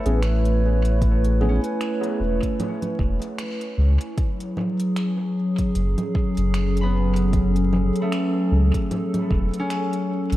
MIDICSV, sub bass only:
0, 0, Header, 1, 2, 480
1, 0, Start_track
1, 0, Tempo, 789474
1, 618, Time_signature, 4, 2, 24, 8
1, 6304, End_track
2, 0, Start_track
2, 0, Title_t, "Sub bass"
2, 0, Program_c, 0, 38
2, 35, Note_on_c, 0, 33, 100
2, 969, Note_off_c, 0, 33, 0
2, 1337, Note_on_c, 0, 28, 96
2, 1459, Note_off_c, 0, 28, 0
2, 1818, Note_on_c, 0, 28, 97
2, 1939, Note_off_c, 0, 28, 0
2, 2297, Note_on_c, 0, 37, 96
2, 2419, Note_off_c, 0, 37, 0
2, 3497, Note_on_c, 0, 30, 97
2, 3619, Note_off_c, 0, 30, 0
2, 3876, Note_on_c, 0, 30, 100
2, 4809, Note_off_c, 0, 30, 0
2, 5178, Note_on_c, 0, 37, 96
2, 5299, Note_off_c, 0, 37, 0
2, 5658, Note_on_c, 0, 28, 102
2, 5779, Note_off_c, 0, 28, 0
2, 6274, Note_on_c, 0, 33, 91
2, 6304, Note_off_c, 0, 33, 0
2, 6304, End_track
0, 0, End_of_file